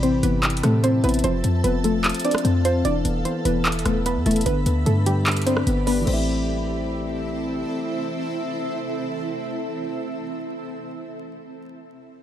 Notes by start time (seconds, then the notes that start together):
Already playing: A1 C3 E3 A4 E5 A5
0.03 E3 C4 C5, closed hi-hat
0.23 G1 E3 B3 B4, closed hi-hat
0.43 E3, clap, closed hi-hat
0.50 closed hi-hat
0.57 closed hi-hat
0.63 A2 A3 C4 A4, cross-stick, closed hi-hat
0.84 C4 C5, closed hi-hat
1.04 A1 B3 E4 B4, closed hi-hat
1.09 closed hi-hat
1.14 closed hi-hat
1.19 closed hi-hat
1.24 F1 F3 C4 C5 F5, closed hi-hat
1.44 F2 C4, closed hi-hat
1.64 F1 F3 B3 B4, closed hi-hat
1.84 F3 A3 A4, closed hi-hat
2.04 F3, clap, closed hi-hat
2.09 closed hi-hat
2.14 closed hi-hat
2.20 closed hi-hat
2.24 C4 D4 D5, closed hi-hat
2.31 cross-stick, closed hi-hat
2.38 closed hi-hat
2.45 F2 C4, closed hi-hat
2.65 C4 F4 C5, closed hi-hat
2.85 E1 E3 D4 D5 E5 B5, closed hi-hat
3.05 E1 B3, closed hi-hat
3.25 E3 C4 C5, closed hi-hat
3.45 E1 E3 B3 B4, closed hi-hat
3.65 E3, clap, closed hi-hat
3.72 closed hi-hat
3.79 closed hi-hat
3.85 E1 A3 B3 A4, cross-stick, closed hi-hat
4.06 B3 B4, closed hi-hat
4.16 E2
4.26 E1 A3 E4 A4, closed hi-hat
4.31 closed hi-hat
4.36 closed hi-hat
4.41 closed hi-hat
4.46 G1 D3 B3 G4 B4 D5, closed hi-hat
4.66 D2 B3, closed hi-hat
4.86 G2 D3 A3 A4, closed hi-hat
5.06 D3 G3 G4, closed hi-hat
5.27 D3, clap, closed hi-hat
5.32 closed hi-hat
5.37 closed hi-hat
5.42 closed hi-hat
5.46 C4 D4 C5, closed hi-hat
5.57 cross-stick
5.67 G1 B3, closed hi-hat
5.87 B3 D4 B4, open hi-hat
6.01 E3
6.05 A1 A3 C4 E4 A4 E5, crash
6.09 C4 E4